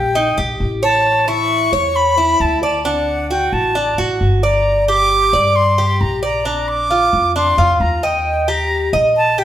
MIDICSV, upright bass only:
0, 0, Header, 1, 2, 480
1, 0, Start_track
1, 0, Key_signature, -2, "minor"
1, 0, Tempo, 450113
1, 1125, Time_signature, 4, 2, 24, 8
1, 10067, End_track
2, 0, Start_track
2, 0, Title_t, "Upright bass"
2, 0, Program_c, 0, 32
2, 0, Note_on_c, 0, 34, 64
2, 367, Note_off_c, 0, 34, 0
2, 401, Note_on_c, 0, 34, 65
2, 626, Note_off_c, 0, 34, 0
2, 641, Note_on_c, 0, 33, 69
2, 1776, Note_off_c, 0, 33, 0
2, 1840, Note_on_c, 0, 40, 61
2, 2520, Note_off_c, 0, 40, 0
2, 2560, Note_on_c, 0, 38, 73
2, 3697, Note_off_c, 0, 38, 0
2, 3760, Note_on_c, 0, 33, 66
2, 4209, Note_off_c, 0, 33, 0
2, 4245, Note_on_c, 0, 33, 57
2, 4469, Note_off_c, 0, 33, 0
2, 4487, Note_on_c, 0, 31, 65
2, 5620, Note_off_c, 0, 31, 0
2, 5683, Note_on_c, 0, 43, 63
2, 6362, Note_off_c, 0, 43, 0
2, 6405, Note_on_c, 0, 34, 72
2, 7540, Note_off_c, 0, 34, 0
2, 7603, Note_on_c, 0, 41, 72
2, 8052, Note_off_c, 0, 41, 0
2, 8081, Note_on_c, 0, 41, 64
2, 8307, Note_off_c, 0, 41, 0
2, 8319, Note_on_c, 0, 39, 76
2, 9457, Note_off_c, 0, 39, 0
2, 9521, Note_on_c, 0, 34, 66
2, 10067, Note_off_c, 0, 34, 0
2, 10067, End_track
0, 0, End_of_file